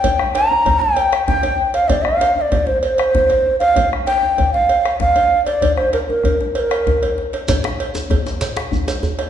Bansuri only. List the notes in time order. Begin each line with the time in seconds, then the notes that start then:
Already playing: G5
0.34 A#5
0.80 G5
1.27 G5
1.74 F5
1.88 D5
2.04 F5
2.36 F5
2.41 D5
2.66 C5
2.81 C5
3.59 F5
4.06 G5
4.53 F5
4.99 F5
5.45 D5
5.76 C5
5.93 A#4
6.09 A#4
6.56 A#4 C5